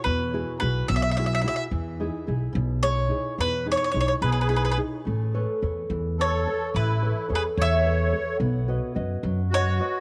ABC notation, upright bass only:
X:1
M:6/8
L:1/8
Q:3/8=72
K:E
V:1 name="Upright bass" clef=bass
E,,2 B,,, B,,,3 | E,,2 B,,, B,,,3 | E,,2 B,,, B,,,3 | A,,,2 E,, E,,3 |
A,,,2 E,, E,,3 | B,,,2 F,, F,,3 |]